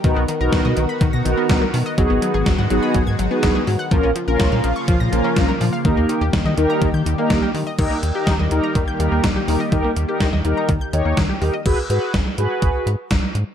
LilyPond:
<<
  \new Staff \with { instrumentName = "Analog polysynth" } { \time 4/4 \key dis \minor \tempo 4 = 124 <b dis' fis' ais'>8 r16 <b dis' fis' ais'>4 r8. <b dis' fis' ais'>8. r8. | <b dis' fis' gis'>8. r8. <b dis' fis' gis'>8. r8 <b dis' fis' gis'>8. r8 | <ais cis' eis' ais'>8 r16 <ais cis' eis' ais'>4 r8. <ais cis' eis' ais'>8. r8. | <ais dis' g' ais'>8. r8. <ais dis' g' ais'>8. r8 <ais dis' g' ais'>8. r8 |
<dis' g' ais'>8 r16 <dis' g' ais'>8 r16 <dis' g' ais'>8 r8 <dis' g' ais'>8 r8 <dis' g' ais'>16 r16 | <dis' g' ais'>8 r16 <dis' g' ais'>8 r16 <dis' g' ais'>8 r8 <dis' g' cis''>8 r8 <dis' g' ais'>16 r16 | <fis' gis' b'>16 r16 <fis' gis' b'>8 r8 <fis' gis' b'>4 r4. | }
  \new Staff \with { instrumentName = "Synth arpeggio sound" } { \time 4/4 \key dis \minor dis16 b16 dis16 ais'16 dis16 dis''16 dis16 b''16 dis16 ais'''16 dis16 b16 dis16 ais'16 dis16 dis''16 | fis16 b16 fis16 gis'16 fis16 fis''16 fis16 b''16 fis16 gis'''16 fis16 b16 fis16 gis'16 fis16 fis''16 | eis16 cis'16 eis16 ais'16 eis16 eis''16 eis16 cis'''16 eis16 ais'''16 eis16 cis'16 eis16 ais'16 eis16 eis''16 | dis16 ais16 dis16 g'16 dis16 dis''16 dis16 ais''16 dis16 g'''16 dis16 ais16 dis16 g'16 dis16 dis''16 |
dis16 ais16 r16 g'16 dis16 dis''16 dis16 ais''16 dis16 g'''16 dis16 ais16 dis16 g'16 dis16 dis''16 | dis16 ais16 r16 g'16 dis16 dis''16 dis16 ais''16 dis16 g'''16 dis16 ais16 dis16 g'16 dis16 dis''16 | r1 | }
  \new Staff \with { instrumentName = "Analog synth pad" } { \time 4/4 \key dis \minor << { <dis fis'>1 | <dis gis fis'>1 | <cis eis eis'>1 | <dis g g'>1 |
<dis g g'>1~ | <dis g g'>1 | r1 | } \\ { <b ais'>1~ | <b ais'>1 | ais1~ | ais1 |
ais1~ | ais1 | r1 | } >> }
  \new Staff \with { instrumentName = "Analog synth bass" } { \clef bass \time 4/4 \key dis \minor b,,16 b,,16 r16 b,,16 b,,16 b,16 b,,16 r16 b,,16 b,16 b,,16 r16 b,,16 r16 b,16 r16 | gis,,16 gis,,16 r16 gis,,16 gis,,16 gis,16 gis,,16 r16 gis,,16 gis,16 gis,,16 r16 gis,,16 r16 gis,16 r16 | ais,,16 ais,,16 r16 ais,,16 ais,,16 ais,16 ais,,16 r16 ais,,16 ais,16 ais,,16 r16 ais,,16 r16 ais,16 r16 | dis,16 dis,16 r16 dis,16 dis,16 dis16 dis,16 r16 dis,16 dis16 dis,16 r16 dis,16 r16 dis16 r16 |
dis,16 r16 dis,16 r8 dis,16 dis,16 r16 dis,16 r16 dis,16 dis,16 dis,16 r16 dis,16 r16 | dis,16 r16 dis,16 r8 dis,16 dis,16 r16 dis,16 r16 dis,16 dis,16 dis,16 r16 dis,16 r16 | gis,,16 r16 gis,16 r16 gis,,16 r16 gis,16 r16 gis,,16 r16 gis,16 r16 gis,,16 r16 gis,16 r16 | }
  \new DrumStaff \with { instrumentName = "Drums" } \drummode { \time 4/4 <hh bd>8 hh8 <hh bd sn>8 hh8 <hh bd>8 hh8 <hh bd sn>8 hho8 | <hh bd>8 hh8 <hh bd sn>8 hh8 <hh bd>8 hh8 <hh bd sn>8 hho8 | <hh bd>8 hh8 <hh bd sn>8 hh8 <hh bd>8 hh8 <hh bd sn>8 hho8 | <hh bd>8 hh8 <hh bd sn>8 hh8 <hh bd>8 hh8 <hh bd sn>8 hho8 |
<cymc hh bd>8 hh8 <hh bd sn>8 hh8 <hh bd>8 hh8 <hh bd sn>8 hho8 | <hh bd>8 hh8 <hh bd sn>8 hh8 <hh bd>8 hh8 <hh bd sn>8 hho8 | <cymc hh bd>8 hh8 <hh bd sn>8 hh8 <hh bd>8 hh8 <hh bd sn>8 hh8 | }
>>